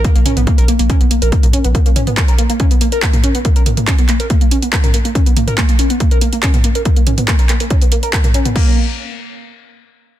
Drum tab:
CC |----------------|----------------|----------------|----------------|
HH |xxoxxxooxxoxxxox|xxoxxxoxxxoxxxox|xxoxxxooxxoxxxox|xxoxxxoxxxoxxxox|
CP |----------------|----x-------x---|----x-x-----x---|----x-------x---|
T2 |--oo---------o--|--oo---------o--|--oo---------o--|--oo---------o--|
BD |o---o---o---o---|o---o---o---o---|o---o---o---o---|o---o---o---o---|

CC |----------------|x---------------|
HH |xxoxxxooxxoxxxox|----------------|
CP |----x-x-----x---|----------------|
T2 |--oo---------o-o|----------------|
BD |o---o---o---o---|o---------------|